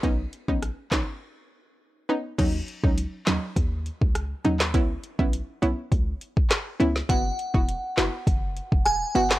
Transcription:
<<
  \new Staff \with { instrumentName = "Synth bell" } { \time 4/4 \key dis \phrygian \tempo 4 = 102 r1 | r1 | r1 | fis''2. gis''8 fis''8 | }
  \new Staff \with { instrumentName = "Synth pluck" } { \time 4/4 \key dis \phrygian <b cis' dis'>16 r8 <b cis' dis'>16 r8 <b cis' dis'>16 r4. r16 <b cis' dis'>16 r16 | <fis cis' dis'>16 r8 <fis cis' dis'>16 r8 <fis cis' dis'>16 r4. r16 <fis cis' dis'>16 r16 | <b cis' e'>16 r8 <b cis' e'>16 r8 <b cis' e'>16 r4. r16 <b cis' e'>16 r16 | <b e' fis'>16 r8 <b e' fis'>16 r8 <b e' fis'>16 r4. r16 <b e' fis'>16 r16 | }
  \new Staff \with { instrumentName = "808-style bass" } { \clef bass \time 4/4 \key dis \phrygian b,,8 r16 ais,,8 r16 ais,,16 r2 r16 | dis,8 r16 cis,8 r16 dis,16 r16 dis,8. cis,8. dis,8 | cis,8 r16 b,,8 r16 b,,16 r16 cis,8 r4 cis,8 | fis,,8 r16 e,,8 r16 fis,,16 r16 fis,,8. e,,8. fis,,8 | }
  \new DrumStaff \with { instrumentName = "Drums" } \drummode { \time 4/4 <hh bd>8 hh16 bd16 <hh ss>8 <hc hh bd sn>8 r4 r4 | <cymc hh bd>8 hh16 bd16 hh8 <hc hh sn>8 <hh bd>8 hh16 bd16 <hh ss>8 hh16 <hc sn>16 | <hh bd>8 hh16 bd16 hh8 hh8 <hh bd>8 hh16 bd16 <hc hh ss sn>8 hh16 sn16 | <hh bd>8 hh16 bd16 hh8 <hc hh sn>8 <hh bd>8 hh16 bd16 <hh ss>8 hh16 <hc sn>16 | }
>>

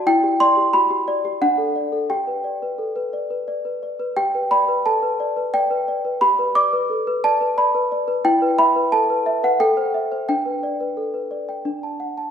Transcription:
\new Staff \with { instrumentName = "Celesta" } { \time 3/4 \key g \major \tempo 4 = 88 << { g''8 c'''8 b''4 fis''4 | g''2~ g''8 r8 | g''8 b''8 a''4 g''4 | b''8 d'''4 a''8 b''4 |
g''8 b''8 a''8. fis''16 g''4 | g''2 r4 | } \\ { e'16 g'16 d''16 g'16 fis'16 g'16 d''16 g'16 d'16 a'16 d''16 a'16 | g'16 b'16 d''16 b'16 a'16 b'16 d''16 b'16 d''16 b'16 d''16 b'16 | g'16 b'16 d''16 b'16 a'16 b'16 d''16 b'16 d''16 b'16 d''16 b'16 | g'16 b'16 d''16 b'16 a'16 b'16 d''16 b'16 d''16 b'16 d''16 b'16 |
e'16 b'16 e''16 b'16 a'16 b'16 e''16 b'16 a'16 c''16 e''16 c''16 | d'16 b'16 d''16 b'16 a'16 b'16 d''16 g''16 d'16 a''16 fis''16 a''16 | } >> }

